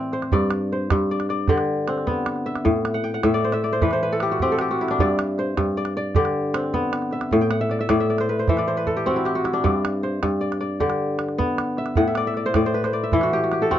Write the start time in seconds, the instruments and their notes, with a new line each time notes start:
Already playing: kora A2 E3 C4 C5 D5
0.12 kora C5, calabash click
0.22 calabash click
0.32 kora G2 D5, calabash thump
0.50 calabash click
0.72 kora C5
0.90 kora G2, calabash thump, calabash click
1.11 kora D5
1.20 calabash click
1.29 kora D5, calabash click
1.47 kora D3 G4, calabash thump, calabash click
1.58 calabash click
1.88 kora C4, calabash click
1.98 calabash click
2.07 kora B3, calabash thump
2.26 calabash click
2.36 calabash click
2.46 kora E5, calabash click
2.56 calabash click
2.65 kora A2, calabash thump
2.85 calabash click
2.94 kora F#5
3.04 kora G5, calabash click
3.14 kora F#5
3.24 kora A2 E5, calabash thump, calabash click
3.34 kora D5
3.44 kora C5
3.52 kora E5, calabash click
3.63 kora D5, calabash click
3.73 kora C5
3.81 kora E3 B4, calabash thump, calabash click
3.91 kora C5, calabash click
4.03 kora B4
4.12 kora A4
4.20 kora G4, calabash click
4.30 kora F#4, calabash click
4.40 kora C4 G4, calabash thump
4.52 kora A4
4.59 kora G4, calabash click
4.69 kora F#4, calabash click
4.79 kora E4, calabash click
4.88 kora D4, calabash click
4.99 kora G2 D5, calabash thump
5.19 calabash click
5.38 kora C5, calabash click
5.57 kora G2, calabash thump, calabash click
5.77 kora D5
5.85 calabash click
5.97 kora D5
6.15 kora D3 G4, calabash thump, calabash click
6.25 calabash click
6.54 kora C4, calabash click
6.64 calabash click
6.73 kora B3, calabash thump
6.93 calabash click
7.02 calabash click
7.11 kora E5, calabash click
7.21 calabash click
7.31 kora A2, calabash thump
7.41 kora G5
7.51 kora F#5, calabash click
7.61 kora E5
7.70 kora D5, calabash click
7.79 kora E5, calabash click
7.89 kora A2 D5, calabash thump, calabash click
8.00 kora E5, calabash click
8.10 kora D5, calabash click
8.18 kora C5, calabash click
8.29 kora B4
8.39 kora C5
8.47 kora E3 E5, calabash thump, calabash click
8.57 kora D5, calabash click
8.67 kora C5
8.77 kora B4
8.86 kora A4, calabash thump
8.97 kora G4
9.06 kora C4 F#4, calabash thump
9.16 kora E4
9.25 kora G4, calabash click
9.35 kora F#4
9.44 kora E4, calabash click
9.53 kora D4
9.64 kora G2 D5, calabash thump
9.85 calabash click
10.03 kora C5, calabash click
10.23 kora G2, calabash thump, calabash click
10.41 kora D5
10.52 calabash click
10.61 kora D5, calabash click
10.80 kora D3 G4, calabash thump, calabash click
10.90 calabash click
11.19 calabash click
11.29 calabash click
11.38 kora B3, calabash thump
11.58 calabash click
11.77 kora E5, calabash click
11.86 calabash click
11.95 kora A2 F#5, calabash thump
12.07 kora E5
12.15 kora D5, calabash click
12.27 kora E5
12.34 kora D5, calabash click
12.46 kora C5
12.54 kora A2 D5, calabash thump, calabash click
12.66 kora C5
12.74 kora B4
12.84 kora C5, calabash click
12.93 kora D5, calabash click
13.04 kora E5
13.12 kora E3 E4, calabash thump, calabash click
13.21 kora F#4, calabash click
13.33 kora G4
13.44 kora F#4
13.52 kora G4, calabash click
13.62 kora A4, calabash click
13.71 kora C4 F#4, calabash thump